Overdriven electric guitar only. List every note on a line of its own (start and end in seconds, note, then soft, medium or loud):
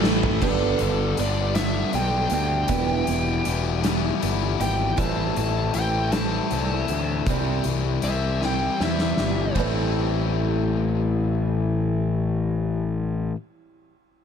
0.00 0.41 A2 medium
0.00 0.41 E3 medium
0.00 0.42 A3 loud
0.41 1.17 G2 medium
0.41 1.17 D3 medium
0.41 1.18 G3 medium
0.41 1.19 B3 medium
0.41 1.19 D4 loud
1.18 1.53 G2 medium
1.18 1.54 D3 medium
1.18 1.55 G3 medium
1.18 1.55 B3 medium
1.18 1.55 D4 medium
1.55 1.91 G2 medium
1.55 1.92 D3 medium
1.55 1.93 G3 medium
1.55 1.93 B3 medium
1.55 1.94 D4 medium
1.93 2.67 G2 medium
1.93 2.67 D3 medium
1.93 2.69 G3 medium
1.93 2.68 B3 medium
1.93 2.68 D4 medium
2.69 3.45 E3 loud
2.69 3.45 G3 medium
2.69 3.46 B3 loud
2.69 3.46 E4 loud
3.46 3.82 E3 medium
3.46 3.83 G3 medium
3.46 3.82 B3 medium
3.46 3.84 E4 medium
3.83 4.20 E3 medium
3.83 4.22 G3 medium
3.83 4.21 B3 medium
3.83 4.22 E4 medium
4.21 4.97 E3 medium
4.21 4.97 G3 medium
4.21 4.96 B3 medium
4.21 4.98 E4 medium
4.97 5.73 A2 medium
4.97 5.74 E3 medium
4.97 5.74 A3 medium
4.97 5.75 C4 medium
4.97 5.76 E4 medium
5.74 6.11 A2 medium
5.74 6.13 E3 medium
5.74 6.12 A3 medium
5.74 6.13 C4 medium
5.74 6.14 E4 medium
6.12 6.50 A2 medium
6.12 6.52 E3 medium
6.12 6.51 A3 medium
6.12 6.52 C4 medium
6.12 6.53 E4 medium
6.51 7.25 A2 medium
6.51 7.27 E3 medium
6.51 7.25 A3 medium
6.51 7.28 C4 medium
6.51 7.28 E4 medium
7.27 8.02 C3 medium
7.27 8.02 E3 medium
7.27 8.03 G3 medium
7.27 8.03 C4 medium
7.27 8.04 E4 medium
8.03 8.40 C3 medium
8.03 8.40 E3 medium
8.03 8.41 G3 medium
8.03 8.41 C4 medium
8.03 8.42 E4 medium
8.41 8.78 C3 medium
8.41 8.79 E3 medium
8.41 8.79 G3 medium
8.41 8.79 C4 medium
8.41 8.80 E4 medium
8.79 9.53 C3 medium
8.79 9.53 E3 medium
8.79 9.53 G3 medium
8.79 9.54 C4 medium
8.79 9.54 E4 medium
9.55 13.34 A2 medium
9.55 13.35 E3 medium
9.55 13.35 A3 medium
9.55 13.36 C4 medium
9.55 13.36 E4 medium
9.59 13.36 A4 medium